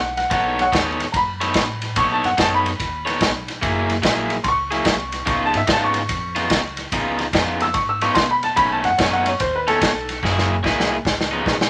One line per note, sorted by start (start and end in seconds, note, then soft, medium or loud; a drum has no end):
0.00 0.26 B1 medium
0.00 0.16 F#5 medium
0.17 0.31 F#5 medium
0.17 snare soft
0.17 ride medium
0.31 0.67 B1 loud
0.31 0.62 B3 medium
0.31 0.62 D#4 medium
0.31 0.63 A4 loud
0.31 0.63 C#5 loud
0.31 0.58 F#5 loud
0.31 kick medium
0.31 snare soft
0.31 ride medium
0.59 0.73 C#5 medium
0.59 0.74 F#5 loud
0.59 snare soft
0.59 ride medium
0.72 1.09 D#2 medium
0.72 1.04 B3 medium
0.72 1.04 D#4 medium
0.72 1.04 A4 loud
0.72 1.04 C#5 loud
0.72 kick medium
0.72 snare loud
0.72 ride medium
1.00 snare soft
1.00 ride medium
1.12 1.50 F#2 medium
1.12 1.15 A#5 medium
1.12 kick medium
1.12 snare soft
1.12 ride medium
1.17 1.96 B5 loud
1.41 1.64 B3 medium
1.41 1.64 D#4 medium
1.41 1.63 A4 medium
1.41 1.63 C#5 loud
1.41 snare soft
1.41 ride medium
1.54 1.91 A2 medium
1.54 kick medium
1.54 snare loud
1.54 ride medium
1.82 snare soft
1.82 ride medium
1.96 2.20 B1 medium
1.96 2.28 B3 medium
1.96 2.28 D#4 medium
1.96 2.29 A4 medium
1.96 2.29 C#5 medium
1.96 2.11 C#6 loud
1.96 kick medium
1.96 snare soft
1.96 ride loud
2.12 2.25 A5 medium
2.24 2.37 F#2 medium
2.24 2.38 F#5 medium
2.24 snare soft
2.24 ride medium
2.38 2.74 F#2 medium
2.38 2.69 B3 medium
2.38 2.70 D#4 loud
2.38 2.70 A4 medium
2.38 2.70 C#5 loud
2.38 2.53 A5 medium
2.38 kick medium
2.38 snare loud
2.38 ride medium
2.55 3.74 B5 loud
2.66 snare soft
2.66 ride medium
2.80 3.16 D#2 medium
2.80 kick medium
2.80 snare soft
2.80 ride medium
3.05 3.29 B3 medium
3.05 3.29 D#4 medium
3.05 3.29 A4 medium
3.05 3.28 C#5 loud
3.05 snare soft
3.05 ride medium
3.21 3.57 B1 medium
3.21 kick medium
3.21 snare loud
3.21 ride medium
3.48 snare soft
3.48 ride medium
3.62 3.99 F#1 loud
3.62 3.93 F#3 medium
3.62 3.93 A#3 loud
3.62 3.94 E4 loud
3.62 3.94 G#4 loud
3.62 kick medium
3.62 snare soft
3.62 ride medium
3.90 snare soft
3.90 ride medium
4.02 4.40 A#1 medium
4.02 4.34 F#3 medium
4.02 4.35 A#3 medium
4.02 4.34 E4 medium
4.02 4.35 G#4 medium
4.02 kick medium
4.02 snare loud
4.02 ride medium
4.30 snare soft
4.30 ride medium
4.44 4.81 C#2 medium
4.44 4.47 C6 medium
4.44 kick medium
4.44 snare soft
4.44 ride medium
4.48 5.26 C#6 loud
4.71 4.94 F#3 medium
4.71 4.94 A#3 medium
4.71 4.94 E4 medium
4.71 4.94 G#4 medium
4.71 snare soft
4.71 ride medium
4.85 5.22 C2 medium
4.85 kick medium
4.85 snare loud
4.85 ride medium
5.12 snare soft
5.12 ride medium
5.26 5.51 C#2 loud
5.26 5.58 C#3 medium
5.26 5.58 B3 medium
5.26 5.58 D#4 medium
5.26 5.58 F4 loud
5.26 5.41 C#6 medium
5.26 kick medium
5.26 snare soft
5.26 ride medium
5.45 5.57 A5 loud
5.54 5.67 G#2 medium
5.54 5.69 E5 medium
5.54 snare soft
5.54 ride medium
5.67 6.04 G#2 medium
5.67 5.99 C#3 medium
5.67 5.99 B3 medium
5.67 6.00 D#4 medium
5.67 6.00 F4 medium
5.67 kick medium
5.67 snare loud
5.67 ride medium
5.71 5.83 A5 medium
5.84 7.03 C#6 medium
5.94 snare soft
5.94 ride medium
6.09 6.46 F2 medium
6.09 kick medium
6.09 snare soft
6.09 ride medium
6.35 6.59 C#3 medium
6.35 6.59 B3 medium
6.35 6.59 D#4 medium
6.35 6.58 F4 loud
6.35 snare soft
6.35 ride medium
6.50 6.87 C#2 medium
6.50 kick medium
6.50 snare loud
6.50 ride medium
6.77 snare soft
6.77 ride medium
6.92 7.29 C#2 loud
6.92 7.24 C#3 medium
6.92 7.24 B3 loud
6.92 7.24 D#4 medium
6.92 7.25 F4 loud
6.92 kick medium
6.92 snare soft
6.92 ride medium
7.19 snare soft
7.19 ride medium
7.33 7.70 F2 medium
7.33 7.65 C#3 medium
7.33 7.65 B3 medium
7.33 7.66 D#4 medium
7.33 7.66 F4 medium
7.33 kick medium
7.33 snare loud
7.33 ride medium
7.60 7.75 E6 loud
7.60 snare soft
7.60 ride medium
7.74 8.11 G#2 medium
7.74 7.88 C#6 loud
7.74 kick loud
7.74 snare soft
7.74 ride medium
7.89 8.02 E6 medium
8.01 8.25 C#3 medium
8.01 8.25 B3 loud
8.01 8.24 D#4 loud
8.01 8.24 F4 loud
8.01 8.16 C#6 medium
8.01 snare soft
8.01 ride medium
8.15 8.52 B2 medium
8.15 8.29 C6 loud
8.15 kick medium
8.15 snare loud
8.15 ride medium
8.31 8.44 B5 loud
8.43 8.57 A5 medium
8.43 snare soft
8.43 ride medium
8.56 8.81 B1 loud
8.56 8.88 B2 medium
8.56 8.88 A3 loud
8.56 8.88 C#4 loud
8.56 8.89 D#4 loud
8.56 8.70 B5 loud
8.56 kick medium
8.56 snare soft
8.56 ride medium
8.71 8.85 A5 medium
8.84 8.97 F#2 medium
8.84 8.98 F#5 loud
8.84 snare soft
8.84 ride medium
8.98 9.35 F#2 medium
8.98 9.30 B2 medium
8.98 9.30 A3 medium
8.98 9.30 C#4 medium
8.98 9.31 D#4 loud
8.98 9.12 C#5 medium
8.98 kick medium
8.98 snare loud
8.98 ride loud
9.13 9.26 F#5 medium
9.26 9.40 C#5 medium
9.26 snare soft
9.26 ride medium
9.40 9.76 D#2 medium
9.40 9.54 C5 medium
9.40 kick medium
9.40 snare soft
9.40 ride loud
9.56 9.68 B4 medium
9.67 9.90 B2 medium
9.67 9.90 A3 medium
9.67 9.90 C#4 loud
9.67 9.89 D#4 loud
9.67 10.21 A4 loud
9.67 snare soft
9.67 ride medium
9.81 10.18 B1 medium
9.81 kick medium
9.81 snare loud
9.81 ride loud
10.09 snare soft
10.09 ride medium
10.23 10.59 F#1 loud
10.23 10.54 F#3 medium
10.23 10.54 A#3 medium
10.23 10.55 E4 loud
10.23 10.54 G#4 loud
10.23 kick medium
10.23 snare medium
10.38 snare medium
10.63 11.00 C2 loud
10.63 10.95 F#3 medium
10.63 10.95 A#3 medium
10.63 10.95 E4 loud
10.63 10.95 G#4 loud
10.63 kick medium
10.63 snare medium
10.80 snare medium
11.05 11.41 C#2 medium
11.05 kick medium
11.05 snare medium
11.21 snare medium
11.31 11.55 C#3 medium
11.31 11.55 F3 medium
11.31 11.55 B3 medium
11.31 11.54 D#4 loud
11.46 11.70 B2 medium
11.46 kick medium
11.46 snare medium
11.61 snare loud